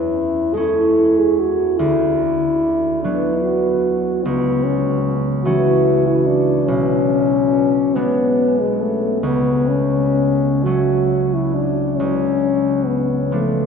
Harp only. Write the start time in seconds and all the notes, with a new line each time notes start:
Already playing: E2
0.54 G#3 C#4
0.60 E4
1.79 D2
3.04 F#3 B3
4.25 C#2
5.45 E3 A3 C#4
6.68 B1
7.95 G#3 B3 D4
9.23 C#2
10.65 F#3 A3 C#4
12.00 C#2
13.32 F3 B3 D4